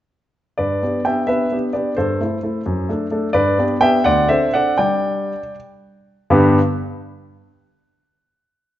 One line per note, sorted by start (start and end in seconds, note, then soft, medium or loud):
0.58 0.81 G2 soft
0.58 1.02 B4 soft
0.58 1.05 D5 medium
0.83 0.99 B3 soft
0.83 0.99 D4 soft
0.83 0.99 G4 soft
1.05 1.22 B3 soft
1.05 1.23 D4 soft
1.05 1.23 G4 soft
1.05 1.25 E5 medium
1.05 1.28 G5 medium
1.27 1.45 B3 soft
1.27 1.45 D4 soft
1.27 1.46 G4 soft
1.27 1.72 B4 medium
1.27 1.55 E5 medium
1.52 1.68 B3 soft
1.52 1.69 D4 soft
1.52 1.69 G4 soft
1.73 1.91 B3 soft
1.73 1.91 D4 soft
1.73 1.92 G4 soft
1.73 1.96 B4 soft
1.73 1.95 D5 medium
1.97 2.20 G2 soft
1.97 2.20 A4 medium
1.97 3.31 C5 medium
2.20 2.37 A3 soft
2.20 2.38 E4 soft
2.20 2.38 A4 soft
2.43 2.60 A3 soft
2.43 2.60 E4 soft
2.43 2.60 A4 soft
2.66 2.89 F#2 medium
2.89 3.06 A3 soft
2.89 3.06 D4 soft
2.89 3.06 A4 soft
3.11 3.28 A3 soft
3.11 3.28 D4 soft
3.11 3.29 A4 soft
3.33 3.57 G2 medium
3.33 3.78 B4 medium
3.33 3.62 D5 medium
3.58 3.75 B3 soft
3.58 3.76 D4 soft
3.58 3.76 G4 soft
3.81 3.99 B3 soft
3.81 3.99 D4 soft
3.81 4.00 G4 medium
3.81 4.04 E5 medium
3.81 4.05 G5 loud
4.04 4.29 D2 medium
4.04 4.28 D5 medium
4.04 4.27 F#5 medium
4.29 4.47 C4 soft
4.29 4.48 D4 soft
4.29 4.48 A4 soft
4.29 4.53 C5 medium
4.29 4.54 E5 medium
4.54 4.72 C4 soft
4.54 4.73 D4 soft
4.54 4.73 A4 soft
4.54 4.77 D5 medium
4.54 4.76 F#5 medium
4.78 5.32 G3 soft
4.78 5.39 D4 soft
4.78 5.39 G4 soft
4.78 5.50 D5 medium
4.78 5.54 G5 medium
6.30 6.58 G2 medium
6.30 6.58 D3 medium
6.30 6.58 B3 medium
6.30 6.58 D4 medium
6.30 6.58 G4 medium
6.30 6.58 B4 medium